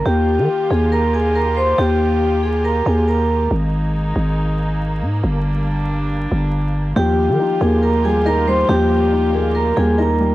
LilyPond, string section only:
\new Staff \with { instrumentName = "String section" } { \time 4/4 \key ees \major \tempo 4 = 139 << { <ees f'>1~ | <ees f'>1 | bes1~ | bes1 |
<ees f'>1~ | <ees f'>1 | } \\ { <bes g'>1~ | <bes g'>1 | <aes ees'>1 | <g d'>1 |
<bes g'>1~ | <bes g'>1 | } >> }